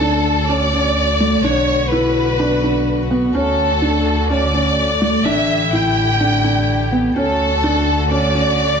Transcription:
Already playing: D2 D3 A3 F#4 A4
0.01 D4
0.48 C#4 D5
0.73 C#4
1.20 A3
1.43 B1 B3 D4 C#5
1.90 E4 B4
2.39 D4
2.63 D4
3.11 B3
3.34 D2 D3 A3 C#4 A4
3.82 D4
4.29 C#4 D5
4.54 C#4
5.01 A3
5.25 A1 D3 D4 E4 G4 E5
5.72 E4 G5
6.20 D4
6.44 D4
6.92 B3
7.15 D2 D3 A3 C#4 F#4 A4
7.63 D4
8.11 C#4 D5
8.35 C#4

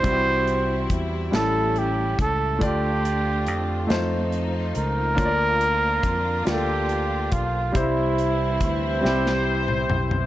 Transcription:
Already playing: E3 G3 C4 E4 C5
0.02 C2 G3 C4 E4 F#4, kick, closed hi-hat
0.12 G4
0.47 closed hi-hat
0.90 E2, kick, closed hi-hat
1.31 A1 A2 G3 A3 C#4 E4 A4, snare, closed hi-hat
1.76 G4, closed hi-hat
2.19 C#2 A4, kick, closed hi-hat
2.59 D2 D3 F3 A3 D4 F4 D5, kick, closed hi-hat
2.64 G4
3.05 closed hi-hat
3.47 F2, closed hi-hat
3.87 F2 A3 C4 D#4 F4 C5, snare, closed hi-hat
4.32 closed hi-hat
4.75 C#2 A#4, closed hi-hat
5.15 D2 D3 A#3 D4 F4 C#5, kick, closed hi-hat
5.25 D5
5.61 closed hi-hat
6.03 F2, kick, closed hi-hat
6.43 D2 A#3 D4 F4 G4, snare, closed hi-hat
6.48 G4
6.54 A4
6.89 closed hi-hat
7.32 B1 F4, kick, closed hi-hat
7.72 C2 C3 E3 G3 C4 E4, kick, closed hi-hat
7.76 C4 E4 C5
8.18 closed hi-hat
8.60 D2 C4 E4 G4 C5, kick, closed hi-hat
9.01 C2 G3 C4 E4
9.05 G4, snare
9.26 snare
9.68 mid tom
9.90 B1, floor tom
10.11 floor tom

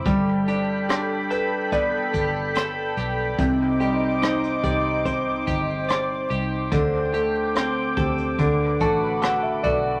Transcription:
Already playing: G3 D4 E4 C5
0.05 G1 G3 A4 G5 B5, kick, closed hi-hat
0.48 D4 G4, closed hi-hat
0.89 D4 G4, cross-stick, closed hi-hat
1.31 A4 B4, closed hi-hat
1.72 B3 D5, kick, closed hi-hat
2.14 G1 G4, kick, closed hi-hat
2.55 A4, cross-stick, closed hi-hat
2.97 B1 G4, cross-stick, closed hi-hat
3.38 C2 C3 D#4 C5 D6, kick, closed hi-hat
3.80 G3 G4, closed hi-hat
4.22 D#4, cross-stick, closed hi-hat
4.44 closed hi-hat
4.64 C2 G4 D5, kick, closed hi-hat
5.05 C4 C5, kick, closed hi-hat
5.47 G1 G4, kick, closed hi-hat
5.89 D5, cross-stick, closed hi-hat
6.30 C2 G4, closed hi-hat
6.72 D2 D3 G5 D6, kick, closed hi-hat
7.14 A3 G4, closed hi-hat
7.55 C4, cross-stick, closed hi-hat
7.97 D2 G4 A4, kick, closed hi-hat
8.18 closed hi-hat
8.39 D2 D3 B4 F#5, kick, closed hi-hat
8.80 A1 A3 F#4 A5, kick, closed hi-hat
9.22 F#4 A4 F#5, cross-stick, closed hi-hat
9.43 E5
9.63 B1 F#4 A4 D5, kick, closed hi-hat

